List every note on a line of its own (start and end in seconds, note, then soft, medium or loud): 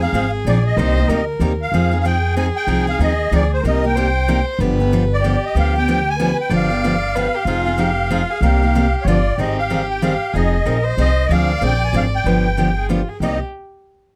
0.00 0.14 C4 soft
0.00 0.14 D#4 medium
0.00 0.78 G#4 medium
0.00 0.13 G#4 medium
0.00 0.31 F5 loud
0.13 0.40 G#1 medium
0.13 0.24 F3 medium
0.13 0.25 C4 medium
0.13 0.25 D#4 medium
0.13 0.25 G#4 medium
0.45 0.72 A#1 medium
0.45 0.57 F3 medium
0.45 0.57 C4 medium
0.45 0.57 D#4 medium
0.45 0.57 G#4 medium
0.45 0.64 D5 medium
0.66 1.25 D#5 medium
0.77 1.02 C2 loud
0.77 0.96 C3 medium
0.77 0.96 G3 medium
0.77 0.96 A#3 medium
0.77 0.96 D#4 medium
0.77 0.96 G4 medium
0.77 1.09 C5 medium
0.97 1.09 A#3 soft
0.97 1.09 D#4 soft
0.97 1.09 G4 medium
1.08 1.36 D2 medium
1.08 1.20 C3 medium
1.08 1.20 G3 medium
1.08 1.20 A#3 medium
1.08 1.20 D#4 medium
1.08 1.21 G4 medium
1.08 1.59 A#4 medium
1.40 1.67 D#2 medium
1.40 1.51 C3 medium
1.40 1.51 G3 medium
1.40 1.52 A#3 medium
1.40 1.52 D#4 medium
1.40 1.52 G4 medium
1.62 1.98 F5 medium
1.72 2.49 F2 medium
1.72 1.92 F3 medium
1.72 1.91 C4 medium
1.72 1.91 D#4 medium
1.72 3.60 G#4 medium
1.72 1.90 G#4 medium
1.91 2.04 C4 soft
1.91 2.04 D#4 soft
1.91 2.04 G#4 medium
2.00 2.05 F5 medium
2.05 2.15 F3 medium
2.05 2.16 C4 medium
2.05 2.16 D#4 medium
2.05 2.16 G#4 medium
2.05 2.35 G5 loud
2.37 2.47 F3 medium
2.37 2.47 C4 medium
2.37 2.48 D#4 medium
2.37 2.48 G#4 medium
2.37 2.46 G#5 loud
2.56 2.86 G5 loud
2.67 2.93 C2 medium
2.67 2.86 F3 medium
2.67 2.87 C4 medium
2.67 2.86 D#4 medium
2.67 2.86 G#4 medium
2.87 3.00 C4 soft
2.87 3.00 D#4 medium
2.87 3.00 G#4 soft
2.87 3.00 F5 medium
2.99 3.27 D#2 medium
2.99 3.11 F3 medium
2.99 3.11 C4 medium
2.99 3.11 D#4 medium
2.99 3.12 G#4 medium
2.99 3.34 D#5 medium
3.31 3.59 D2 medium
3.31 3.43 F3 medium
3.31 3.43 C4 medium
3.31 3.43 D#4 medium
3.31 3.43 G#4 medium
3.31 3.51 D5 medium
3.53 3.65 C5 medium
3.63 4.40 C2 medium
3.63 3.83 C3 medium
3.63 3.83 G3 medium
3.63 3.83 A#3 medium
3.63 3.83 D#4 medium
3.63 3.83 G4 medium
3.63 3.97 A#4 loud
3.63 3.85 D#5 medium
3.84 3.96 A#3 soft
3.84 3.96 D#4 medium
3.84 3.96 G4 medium
3.84 4.45 G5 loud
3.95 4.07 C3 medium
3.95 4.07 G3 medium
3.95 4.07 A#3 medium
3.95 4.08 D#4 medium
3.95 4.08 G4 medium
3.95 4.61 C5 medium
4.28 4.39 C3 medium
4.28 4.39 G3 medium
4.28 4.39 A#3 medium
4.28 4.39 D#4 medium
4.28 4.39 G4 medium
4.59 5.36 G1 medium
4.59 4.79 D3 medium
4.59 4.78 F3 medium
4.59 4.79 B3 medium
4.59 4.79 D4 medium
4.59 4.79 G4 medium
4.59 5.22 B4 loud
4.80 4.92 B3 soft
4.80 4.92 D4 soft
4.80 4.92 G4 medium
4.93 5.03 D3 medium
4.93 5.03 F3 medium
4.93 5.03 B3 medium
4.93 5.03 D4 medium
4.93 5.03 G4 medium
5.13 5.45 D5 medium
5.23 5.35 D3 medium
5.23 5.35 F3 medium
5.23 5.35 B3 medium
5.23 5.35 D4 medium
5.23 6.15 G4 loud
5.23 5.35 G4 medium
5.46 5.56 D#5 medium
5.55 6.32 D2 medium
5.55 5.74 D3 medium
5.55 5.74 F3 medium
5.55 5.74 B3 medium
5.55 5.75 D4 medium
5.55 5.74 G4 medium
5.55 5.75 F5 medium
5.76 5.87 B3 soft
5.76 5.88 D4 medium
5.76 5.87 G4 medium
5.76 6.09 G5 loud
5.88 5.98 D3 medium
5.88 5.99 F3 medium
5.88 5.99 B3 medium
5.88 5.99 D4 medium
5.88 5.99 G4 medium
6.10 6.38 G#5 loud
6.18 6.30 D3 medium
6.18 6.30 F3 medium
6.18 6.30 B3 medium
6.18 6.30 D4 medium
6.18 6.31 G4 medium
6.18 6.52 B4 loud
6.41 6.53 G5 medium
6.50 7.27 G1 medium
6.50 6.69 D3 medium
6.50 6.69 F3 medium
6.50 6.70 B3 medium
6.50 6.70 D4 medium
6.50 6.69 G4 medium
6.50 7.16 D5 loud
6.55 9.04 F5 medium
6.70 6.83 B3 soft
6.70 6.83 D4 medium
6.70 6.82 G4 medium
6.84 6.94 D3 medium
6.84 6.95 F3 medium
6.84 6.94 B3 medium
6.84 6.95 D4 medium
6.84 6.95 G4 medium
7.15 7.26 D3 medium
7.15 7.26 F3 medium
7.15 7.26 B3 medium
7.15 7.27 D4 medium
7.15 7.27 G4 medium
7.15 7.36 B4 loud
7.35 7.47 G4 loud
7.45 8.22 F1 medium
7.45 7.65 F3 medium
7.45 7.65 C4 medium
7.45 7.65 D#4 medium
7.45 7.81 F4 medium
7.45 7.64 G#4 medium
7.66 7.77 C4 soft
7.66 7.78 D#4 medium
7.66 7.77 G#4 medium
7.78 7.89 F3 medium
7.78 7.89 C4 medium
7.78 7.90 D#4 medium
7.78 8.12 G4 medium
7.78 7.89 G#4 medium
8.10 8.21 F3 medium
8.10 8.21 C4 medium
8.10 8.22 D#4 medium
8.10 8.32 F4 medium
8.10 8.22 G#4 medium
8.30 8.43 G#4 loud
8.41 8.92 C2 medium
8.41 8.61 C3 medium
8.41 8.61 G3 medium
8.41 8.61 A#3 medium
8.41 8.61 D#4 medium
8.41 8.61 G4 medium
8.41 9.08 G4 medium
8.63 8.75 A#3 soft
8.63 8.75 D#4 medium
8.63 8.74 G4 medium
8.75 8.85 C3 medium
8.75 8.86 G3 medium
8.75 8.86 A#3 medium
8.75 8.86 D#4 medium
8.75 8.86 G4 medium
9.02 9.31 G1 medium
9.02 9.07 C#5 medium
9.07 9.18 D3 medium
9.07 9.18 F3 medium
9.07 9.18 B3 medium
9.07 9.18 D4 medium
9.07 9.38 F4 medium
9.07 9.18 G4 medium
9.07 9.40 D5 medium
9.38 10.14 G#1 medium
9.38 9.58 D#3 medium
9.38 9.59 G3 medium
9.38 9.59 C4 medium
9.38 9.59 D#4 medium
9.38 10.35 G4 medium
9.38 9.59 G#4 medium
9.38 9.57 D#5 medium
9.58 9.88 F5 medium
9.70 9.81 D#3 medium
9.70 9.81 G3 medium
9.70 9.81 C4 medium
9.70 9.81 D#4 medium
9.70 9.81 G#4 medium
9.90 10.02 G5 medium
10.02 10.13 D#3 medium
10.02 10.13 G3 medium
10.02 10.13 C4 medium
10.02 10.13 D#4 medium
10.02 10.14 G#4 medium
10.02 10.35 F5 medium
10.33 10.59 F1 medium
10.33 10.54 F3 medium
10.33 10.55 C4 medium
10.33 10.55 D#4 medium
10.33 10.67 G#4 medium
10.33 10.55 G#4 medium
10.33 10.95 D#5 medium
10.65 10.93 A#1 medium
10.65 10.76 F3 medium
10.65 10.77 C4 medium
10.65 10.77 D#4 medium
10.65 10.77 G#4 medium
10.65 10.85 A#4 medium
10.83 11.29 C5 loud
10.97 11.25 C2 medium
10.97 11.09 F3 medium
10.97 11.09 C4 medium
10.97 11.09 D#4 medium
10.97 11.09 G#4 medium
10.97 11.32 D#5 loud
11.29 11.55 D2 medium
11.29 11.50 D3 medium
11.29 11.50 F3 medium
11.29 11.50 C4 medium
11.29 11.50 D4 medium
11.29 11.51 G#4 medium
11.29 12.27 D5 loud
11.29 11.64 F5 medium
11.61 11.88 A#1 medium
11.61 11.72 D3 medium
11.61 11.73 F3 medium
11.61 11.73 C4 medium
11.61 11.73 D4 medium
11.61 11.73 G#4 medium
11.66 11.83 G5 loud
11.84 11.95 G#5 medium
11.93 12.20 G#1 medium
11.93 12.04 D3 medium
11.93 12.04 F3 medium
11.93 12.05 C4 medium
11.93 12.05 D4 medium
11.93 12.05 G#4 medium
11.93 12.04 F5 medium
12.15 12.87 G5 medium
12.24 13.01 G1 medium
12.24 12.46 D3 medium
12.24 12.46 F3 medium
12.24 12.46 B3 medium
12.24 12.46 D4 medium
12.24 12.46 G4 medium
12.24 12.59 B4 medium
12.57 12.68 D3 medium
12.57 12.69 F3 medium
12.57 12.69 B3 medium
12.57 12.69 D4 medium
12.57 12.76 G4 medium
12.57 12.69 G4 medium
12.77 12.90 G#4 medium
12.89 13.00 D3 medium
12.89 13.00 F3 medium
12.89 13.00 B3 medium
12.89 13.01 D4 medium
12.89 13.10 F4 medium
12.89 13.01 G4 medium
13.08 13.21 G#4 medium
13.20 13.39 C2 medium
13.20 13.37 C3 medium
13.20 13.37 G3 medium
13.20 13.37 A#3 medium
13.20 13.38 D#4 medium
13.20 13.39 G4 medium
13.20 13.38 G4 medium
13.20 13.40 D#5 medium